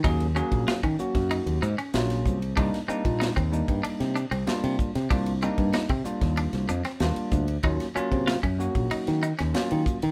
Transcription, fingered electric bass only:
\new Staff \with { instrumentName = "Fingered electric bass" } { \clef bass \time 4/4 \key ees \major \tempo 4 = 95 ees,8. bes,,16 r16 ees16 r16 ges,8 ees,16 aes,16 r16 bes,,8 c,8 | c,16 r8 bes,8 ees,8 g,16 r16 c8 c,16 r16 c16 r16 c16 | c,8. g,16 r16 c16 r16 ees,8 c,16 f,16 r16 ees,16 r16 d,8 | ees,16 r8 c8 ges,8 bes,,16 r16 ees8 ees,16 r16 ees16 r16 ees16 | }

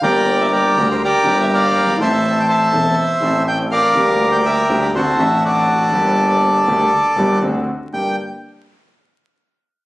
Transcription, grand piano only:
\new Staff \with { instrumentName = "Grand piano" } { \clef bass \time 4/4 \key g \dorian \tempo 4 = 122 << { <g,, g, d g bes g'>4. <d, d g bes g'>8 r8 <g,, g, d g bes g'>4. | <a,, a, e a c' a'>4. <e,, e, e a c' a'>8 r8 <a,, a, e a c' a'>4. | <d, d g bes g'>4. <d, d g bes g'>8 <d, d a c' fis'>8 <a,, a, d a c' fis'>4. | <g,, g, d g bes g'>4. <d, d g bes g'>8 r8 <g,, g, d g bes g'>8 <d, d a c' fis'>8 r8 |
<g, bes d' g'>8 r2. r8 | } \\ { r2. r8 r32 fis,,32 g,,32 aes,,32 | r1 | r1 | r1 |
r1 | } >> }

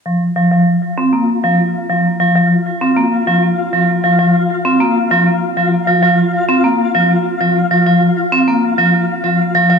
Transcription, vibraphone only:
\new Staff \with { instrumentName = "Vibraphone" } { \clef bass \time 4/4 \key bes \dorian \tempo 4 = 98 f16 r16 f16 f16 r8 c'16 bes16 r16 f16 r8 f16 r16 f16 f16 | r8 c'16 bes16 r16 f16 r8 f16 r16 f16 f16 r8 c'16 bes16 | r16 f16 r8 f16 r16 f16 f16 r8 c'16 bes16 r16 f16 r8 | f16 r16 f16 f16 r8 c'16 bes16 r16 f16 r8 f16 r16 f16 f16 | }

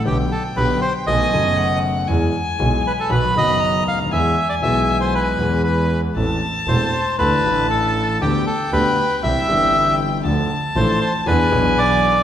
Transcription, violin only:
\new Staff \with { instrumentName = "Violin" } { \time 4/4 \key e \phrygian \tempo 4 = 118 g''2 gis''4 fis''4 | gis''2 b''4 bes''4 | gis''2.~ gis''8 r8 | a''2 a''2 |
g''2 g''2 | a''2 gis''2 | }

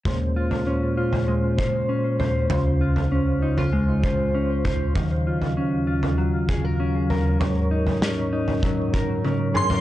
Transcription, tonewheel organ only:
<<
  \new Staff \with { instrumentName = "Tonewheel organ" } { \time 4/4 \key bes \minor \tempo 4 = 98 <bes, des' c''>1 | <des, f' c''>1 | <ees, ges f''>1 | <aes, bes' des''>1 | }
  \new Staff \with { instrumentName = "Tonewheel organ" } { \clef bass \time 4/4 \key bes \minor aes1 | des1~ | des1 | ges1 | }
>>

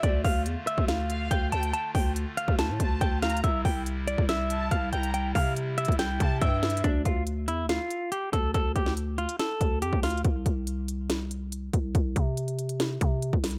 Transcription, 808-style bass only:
\new Staff \with { instrumentName = "808-style bass" } { \clef bass \time 4/4 \key d \minor \tempo 4 = 141 d,8 d,8 e,16 r8 d,4~ d,16 d,8 d,8 | r8 d,8. r8 d,8 a,16 d,8 d,4 | c,8 c,4~ c,16 c,4~ c,16 c,8 c,8~ | c,8 c4~ c16 c,8. c8 g,4 |
d,8 d,4 e,16. d,16. r4 r16 d,8 | d,8 d,4~ d,16 r8. d,8 f,16 d,8. | c,8 c,2. c,8 | c,8 c2 c8. c,8. | }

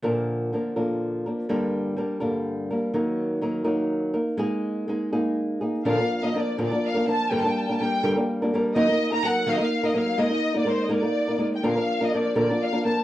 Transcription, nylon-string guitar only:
\new Staff \with { instrumentName = "Nylon-string guitar" } { \time 6/8 \key bes \major \tempo 4. = 83 <bes, d f bes d' bes'>4 <f bes d' bes'>8 <bes, d f bes d' bes'>4 <f bes d' bes'>8 | <g, d g bes d' bes'>4 <g bes d' bes'>8 <g, d g bes d' bes'>4 <g bes d' bes'>8 | <ees ges bes ees' bes'>4 <ges bes ees' bes'>8 <ees ges bes ees' bes'>4 <bes ees' bes'>8 | <aes bes ees' aes'>4 <aes bes ees' aes'>8 <aes bes ees' aes'>4 <bes ees' aes'>8 |
<bes, d f bes d' bes'>16 <f bes d' bes'>8 <f bes d' bes'>16 <f bes d' bes'>8 <bes, d f bes d' bes'>16 <f bes d' bes'>8 <f bes d' bes'>16 <f bes d' bes'>8 | <g, d g bes d' bes'>16 <g bes d' bes'>8 <g bes d' bes'>16 <g bes d' bes'>8 <g, d g bes d' bes'>16 <g bes d' bes'>8 <g bes d' bes'>16 <g bes d' bes'>8 | <ees ges bes ees' bes'>16 <bes ees' bes'>8 <bes ees' bes'>16 <ges bes ees' bes'>8 <ees ges bes ees' bes'>16 <bes ees' bes'>8 <bes ees' bes'>16 <ges bes ees' bes'>8 | <aes bes ees' bes'>16 <bes ees' bes'>8 <bes ees' bes'>16 <aes bes ees' bes'>8 <aes bes ees' bes'>16 <bes ees' bes'>8 <bes ees' bes'>16 <aes bes ees' bes'>8 |
<bes, d f bes d' bes'>16 <f bes d' bes'>8 <f bes d' bes'>16 <f bes d' bes'>8 <bes, d f bes d' bes'>16 <f bes d' bes'>8 <f bes d' bes'>16 <f bes d' bes'>8 | }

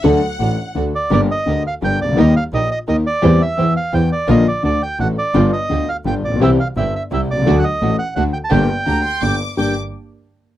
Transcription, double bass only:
\new Staff \with { instrumentName = "Double bass" } { \clef bass \time 3/4 \key d \mixolydian \tempo 4 = 170 d,8 r8 a,,8 r8 d,8 r8 | \key g \minor g,,8 r8 d,8 r8 g,,8 cis,8 | ees,8 r8 bes,,8 r8 ees,8 r8 | e,8 r8 e,8 r8 e,8 r8 |
bes,,8 r8 d,8 r8 a,,8 r8 | g,,8 r8 d,8 r8 g,,8 bes,,8 | c,8 r8 g,,8 r8 c,8 c,8 | d,8 r8 a,,8 r8 d,8 r8 |
g,,8 r8 d,8 r8 g,,8 r8 | g,,8 r2 r8 | }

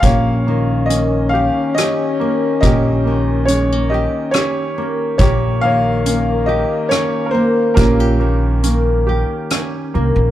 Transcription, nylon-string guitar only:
\new Staff \with { instrumentName = "Nylon-string guitar" } { \time 3/4 \key ees \mixolydian \tempo 4 = 70 << { g'4 bes8 g'8 des'8 bes8 | g'4 aes16 bes16 g'8 des'8 bes8 | g'4 bes8 g'8 des'8 bes8 | f'16 g'8. bes8 g'8 des'8 bes8 | } \\ { bes,8 ees2~ ees8 | bes,8 ees2~ ees8 | bes,8 ees2~ ees8 | bes,8 ees2~ ees8 | } >> }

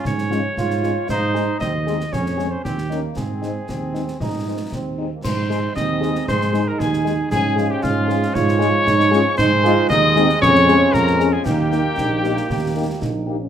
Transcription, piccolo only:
\new Staff \with { instrumentName = "Piccolo" } { \time 2/4 \key aes \major \tempo 4 = 116 r2 | r2 | r2 | r2 |
r2 | c'''4 ees'''4 | c'''8. bes''16 aes''4 | aes''8. g''16 f''4 |
des'''2 | c'''4 ees'''4 | des'''4 bes''8. aes''16 | g''2~ |
g''4. r8 | }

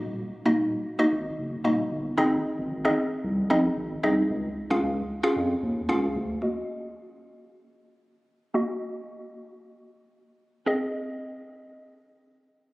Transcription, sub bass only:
\new Staff \with { instrumentName = "Sub bass" } { \clef bass \time 4/4 \key ees \dorian \tempo 4 = 113 ees,,8 r16 ees,,16 ees,,8 r8 aes,,8 ges,,8 ees,,8 g,,8 | aes,,8 r16 aes,,16 aes,,8 r8 c,8 bes,,8 aes,,8 c,8 | des,8 r16 des,16 des,8 r8 f,8 ees,8 des,8 d,8 | r1 |
r1 | r1 | }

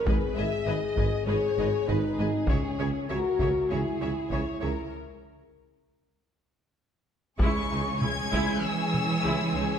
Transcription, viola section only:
\new Staff \with { instrumentName = "Viola section" } { \time 4/4 \key cis \dorian \tempo 4 = 98 <gis' b'>8 <gis' b'>8 <gis' b'>8 <gis' b'>8 <gis' b'>8 <gis' b'>8 <gis' b'>8 <gis' b'>8 | <gis' cis''>8 <gis' cis''>8 <gis' cis''>8 <gis' cis''>8 <gis' cis''>8 <gis' cis''>8 <gis' cis''>8 <gis' cis''>8 | r1 | <gis e'>8 <gis dis'>8 <gis e'>8 <gis e'>8 r4 <gis e'>8 <gis dis'>8 | }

